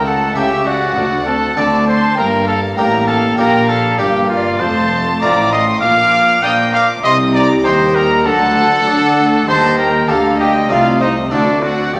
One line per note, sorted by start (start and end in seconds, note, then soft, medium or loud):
0.00 0.32 C#2 medium
0.00 0.35 C#2 medium
0.00 0.97 A3 medium
0.04 0.35 A4 medium
0.04 0.35 F#5 medium
0.04 0.35 A5 medium
0.35 0.95 C#2 medium
0.35 0.95 C#3 medium
0.35 0.92 C#3 medium
0.35 0.79 E4 soft
0.35 0.68 G4 medium
0.35 0.80 G4 medium
0.35 0.65 E5 medium
0.35 0.66 G5 loud
0.65 1.26 F#4 medium
0.65 1.26 D5 medium
0.65 1.25 F#5 medium
0.95 1.56 D2 medium
0.95 1.53 D2 medium
0.95 1.56 D2 medium
0.95 1.04 D4 medium
1.25 1.33 C4 medium
1.25 1.56 A4 medium
1.25 1.56 F#5 medium
1.25 1.56 A5 medium
1.56 2.16 D2 medium
1.56 2.16 D3 medium
1.56 2.14 D3 medium
1.56 2.16 A3 medium
1.56 2.00 C4 soft
1.56 2.01 D4 soft
1.56 2.01 A4 medium
1.56 1.87 D5 medium
1.56 1.85 A5 medium
1.56 1.87 D6 medium
1.86 2.17 C5 medium
1.86 2.16 A5 medium
1.86 2.17 C6 medium
2.15 2.76 G1 medium
2.15 2.76 G2 medium
2.15 2.74 G2 medium
2.15 3.95 A#3 medium
2.15 2.47 A#4 medium
2.15 2.46 G5 medium
2.15 2.25 A#5 loud
2.46 2.61 A4 medium
2.46 2.76 F5 medium
2.46 2.77 A5 medium
2.76 3.37 A1 medium
2.76 3.36 A2 medium
2.76 3.34 A2 medium
2.76 3.21 A#3 medium
2.76 3.21 D4 medium
2.76 3.22 G4 medium
2.76 3.09 A#4 medium
2.76 2.84 G5 medium
2.76 3.07 A#5 loud
3.06 3.38 A4 medium
3.06 3.37 F5 medium
3.06 3.16 A5 loud
3.36 3.97 A#1 medium
3.36 3.94 A#2 medium
3.36 3.97 A#2 medium
3.36 3.81 A#3 medium
3.36 3.82 D4 medium
3.36 3.82 G4 medium
3.36 3.71 A#4 medium
3.36 3.67 G5 medium
3.36 3.67 A#5 loud
3.67 4.00 A4 medium
3.67 3.97 F5 medium
3.67 3.98 A5 loud
3.98 4.60 G1 medium
3.98 4.56 G2 medium
3.98 4.60 G2 medium
3.98 4.59 A#3 medium
3.98 4.43 A#3 soft
3.98 4.43 D4 soft
3.98 4.29 G4 medium
3.98 4.44 G4 soft
3.98 4.06 D5 medium
3.98 4.29 G5 medium
4.29 4.62 F4 medium
4.29 4.59 D5 medium
4.29 4.59 F5 loud
4.59 5.20 F1 medium
4.59 5.17 F2 medium
4.59 5.20 F2 medium
4.59 5.82 A3 medium
4.59 5.00 C5 medium
4.59 5.21 A5 loud
4.59 5.20 C6 loud
5.21 5.81 A1 medium
5.21 5.81 A2 medium
5.21 5.78 A2 medium
5.21 5.66 A3 medium
5.21 5.66 F4 medium
5.21 5.66 C5 medium
5.21 5.50 D5 medium
5.21 5.52 A#5 medium
5.21 5.51 D6 loud
5.51 5.66 D#5 medium
5.51 5.82 C6 medium
5.51 5.82 D#6 loud
5.81 6.42 A#1 medium
5.81 6.39 A#2 medium
5.81 6.42 A#2 medium
5.81 6.43 A#3 medium
5.81 6.44 F5 loud
5.81 6.41 D6 loud
5.81 6.42 F6 loud
6.43 7.03 A#2 medium
6.43 7.04 F3 medium
6.43 7.03 A#3 medium
6.43 6.87 A#3 medium
6.43 6.88 D4 medium
6.43 6.88 D5 medium
6.43 6.73 G5 medium
6.43 6.51 D#6 loud
6.43 6.74 G6 loud
6.73 6.88 F5 loud
6.73 7.04 D6 medium
6.73 6.81 F6 medium
7.03 7.64 C2 loud
7.03 7.64 C3 medium
7.03 7.61 C3 medium
7.03 8.24 G3 medium
7.03 7.17 D#5 loud
7.03 7.11 C6 loud
7.03 7.34 D#6 loud
7.34 7.48 D5 medium
7.34 7.64 A#5 medium
7.34 7.65 D6 loud
7.64 8.25 D#2 medium
7.64 8.24 D#3 medium
7.64 8.22 D#3 medium
7.64 8.09 D#4 medium
7.64 7.97 C5 medium
7.64 8.09 C5 medium
7.64 7.93 G5 medium
7.64 7.73 C6 loud
7.94 8.27 A#4 medium
7.94 8.02 G5 medium
7.94 8.26 A#5 loud
8.25 8.86 D2 medium
8.25 8.86 D3 medium
8.25 8.83 D3 medium
8.25 8.85 F#3 medium
8.25 9.48 A4 loud
8.25 9.45 F#5 loud
8.25 9.45 A5 loud
8.86 9.46 D3 medium
8.86 8.94 F#3 medium
8.86 9.46 D4 medium
8.86 9.31 D4 medium
8.86 9.31 A4 medium
9.17 9.47 A3 medium
9.47 10.07 D#2 loud
9.47 10.07 D#3 medium
9.47 10.04 D#3 medium
9.47 10.07 G3 medium
9.47 9.78 C5 loud
9.47 9.77 A5 loud
9.47 9.56 C6 loud
9.77 10.11 A#4 medium
9.77 10.07 G5 medium
9.77 10.08 A#5 medium
10.07 10.68 D2 medium
10.07 10.68 D3 medium
10.07 10.65 D3 medium
10.07 10.68 G3 medium
10.07 10.53 A#3 medium
10.07 10.53 G4 medium
10.07 10.39 A4 medium
10.07 10.38 F5 medium
10.07 10.15 A5 loud
10.38 10.53 G4 medium
10.38 10.68 D#5 medium
10.38 10.69 G5 loud
10.69 11.31 C2 medium
10.69 11.31 C3 medium
10.69 11.27 C3 medium
10.69 11.27 A3 medium
10.69 11.30 A3 medium
10.69 11.28 C4 soft
10.69 11.28 D#4 soft
10.69 11.00 F4 medium
10.69 11.00 D5 medium
10.69 11.00 F5 loud
11.00 11.15 D#4 medium
11.00 11.08 C5 medium
11.00 11.31 D#5 medium
11.31 11.92 D2 medium
11.31 11.92 D3 medium
11.31 11.90 D3 medium
11.31 11.90 A3 soft
11.31 11.93 A3 medium
11.31 11.90 C4 soft
11.31 11.64 D4 medium
11.31 11.90 F#4 soft
11.31 11.62 A4 medium
11.31 11.62 D5 medium
11.62 11.93 F#4 medium
11.62 11.92 D5 medium
11.62 11.94 F#5 medium
11.93 12.00 G1 medium
11.93 12.00 G2 medium
11.93 12.00 A#3 medium
11.93 12.00 G4 medium
11.93 12.00 D5 medium
11.93 12.00 G5 loud